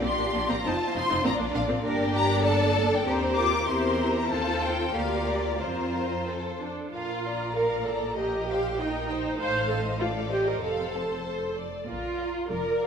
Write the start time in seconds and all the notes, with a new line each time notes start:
Already playing: F4 G4 D5
0.02 A#1 A#3 C4 C6
0.18 A#1 A#3 D4
0.32 A#1 A#3 D4
0.49 A#1 A#3 C4 A#5
0.64 F1 C4 D#4 F4 C5 A5
0.95 F1 C4 D#4 C6
1.09 F1 C4 D#4
1.23 A#1 A#3 C4 D4 D5 A#5
1.38 A#1 A#3 D4
1.53 A#1 A#3 D4 F5
1.68 A#1 A#3 C4
1.84 G1 A#3 D4 G4 A#4 D5
2.14 G4 A#5
2.45 A4 A5
2.93 G5
3.06 D#2 C4 G4 A#4 C5
3.37 F4 D6
3.67 E2 C4 E4 G4 A#4 C5 C6
4.16 A#5
4.31 D#2 C4 F4 A4 C5 A5
4.62 G5
4.95 D2 A#3 F4 G4 A#4 D5 F5
5.27 D5
5.59 F2 C4 F4 A#4 C5
6.26 C4 A4 C5
6.59 D4
6.91 A#1 A#2 F4 A#4 F5
7.26 D5 A#5
7.55 A#4 D5 F5
7.86 A4 D5 A#5
8.17 G4 A#4 D#5
8.49 C5 F5 G5
8.79 D#4 A#4 D#5 G5
9.09 C5 G5
9.38 A1 A2 A4 C5 F5
9.69 A4 C5 D#5
9.99 F4 A4 D5 F5
10.30 G4 C5 D#5
10.47 A#4
10.61 F1 F2 A4 C5 F5
10.93 C5 A5
11.24 C5
11.56 D5
11.88 A#1 A#2 F4 A#4
12.20 D5 F5
12.50 F1 F2 A#4 D5
12.83 A4 D5 F5